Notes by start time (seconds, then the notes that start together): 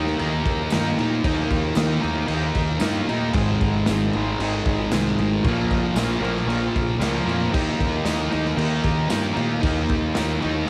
Already playing: D#2 D#3 A#3 D#4 A#4
0.07 snare
0.17 D#2 D#3 A#3 D#4 G4 A#4, crash
0.21 D#4
0.46 D#2 D#4 G4 A#4, kick, crash
0.70 G2 D#3 A#3 D#4, snare, tambourine, crash
0.75 G4 A#4
0.98 A#2 D#3 A#3 D#4 G4 A#4, crash
1.24 D#2 D#3 A#3 D#4 A#4, kick, crash
1.29 G4
1.50 D#2 D#4, kick, crash
1.55 G4 C#5
1.75 D#2 D#3 A#3 D#4 G4, snare, tambourine, crash
1.80 D#4 A#4
2.01 D#2 D#3 A#3 D#4 G4, crash
2.06 A#4
2.27 D#2 D#3 A#3 D#4, crash
2.34 D#4 G4 A#4
2.55 D#2 D#4, kick, crash
2.60 G4 A#4
2.80 G2 D#3 A#3 D#4 G4, snare, tambourine, crash
2.85 A#4
3.08 A#2 D#3 A#3 D#4 G4 A#4, crash
3.33 G#1 G#2 D#3 G#3 D#4 G#4 C5, kick, crash
3.59 G#1 D#4 G#4 C5, kick, crash
3.86 G#1 G#2 D#3 G#3 D#4 G#4 C5, snare, tambourine, crash
4.13 G#1 G#2 D#3 G#3 D#4 G#4 C5, crash
4.38 G#1 G#2 D#3 D#4 G#4 C5, crash
4.43 G#3
4.65 G#1 D#4 G#4 C5, kick, crash
4.90 C2 G#2 D#3 G#3 D#4 G#4 C5, snare, tambourine, crash
5.16 G#1 G#2 D#4 G#4 C5, crash
5.21 D#3 G#3
5.42 A#1 F4 A#4 C#5, kick, crash
5.47 A#2 F3 A#3
5.67 F4 A#4 D#5, kick, crash
5.71 A#1
5.94 A#1 A#2 F3 A#3 F4 A#4 C#5, snare, tambourine, crash
6.11 snare
6.20 A#1 A#2 F3 A#3 F4 A#4 C#5
6.24 crash
6.37 snare
6.44 A#1 A#2 F4 A#4 C#5
6.48 F3 A#3, crash
6.74 A#1 F4 A#4 C#5, kick, crash
6.99 C#2 A#2 F3 A#3 F4 A#4 C#5, snare, tambourine, crash
7.26 F2 A#2 F3 A#3 F4 A#4 C#5, crash
7.52 D#2 D#3 A#3 D#4 G4 A#4 D#5, kick, crash
7.78 D#2 G4 A#4 D#5, kick, crash
8.03 D#2 D#3 A#3 G4 A#4 D#5, snare, tambourine, crash
8.07 D#4
8.30 D#2 D#3 A#3 D#4 G4 A#4 D#5, crash
8.45 snare
8.57 D#2 D#3 A#3 D#4 G4 A#4 D#5, crash
8.83 D#2 G4 A#4 D#5, kick, crash
9.09 G2 D#3 A#3 D#4 G4 A#4 D#5, snare, tambourine, crash
9.34 A#2 D#3 A#3 D#4 G4, crash
9.38 A#4 D#5
9.62 D#2 D#3 A#3 D#4 G4 A#4, kick, crash
9.66 D#5
9.89 D#2 G4 A#4 D#5, kick, crash
10.14 D#2 D#3 A#3 D#4 G4 A#4 D#5, snare, tambourine, crash
10.39 D#3 A#3 D#4 G4 A#4 C#5, crash
10.44 D#2